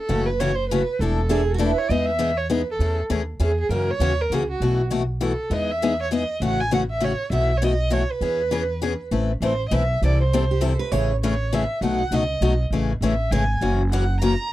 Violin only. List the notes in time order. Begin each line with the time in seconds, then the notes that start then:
Already playing: A4
0.26 B4
0.40 C#5
0.55 C5
0.69 B4
1.01 A4
1.60 B4
1.78 C#5
1.90 D#5
2.06 E5
2.37 C#5
2.53 B4
2.71 A4
3.43 G#4
3.60 G#4
3.72 A#4
3.91 C#5
4.21 A#4
4.34 G#4
4.51 F#4
5.23 A4
5.53 D#5
5.71 E5
6.02 C#5
6.15 D#5
6.45 F#5
6.60 G#5
6.74 F#5
6.91 E5
7.04 C#5
7.33 E5
7.58 C#5
7.64 D#5
7.93 C#5
8.11 B4
9.45 C5
9.68 D#5
9.75 E5
10.06 D5
10.21 C5
11.24 C#5
11.54 E5
11.84 F#5
12.14 D#5
13.03 E5
13.32 G#5
13.91 F#5
14.21 A#5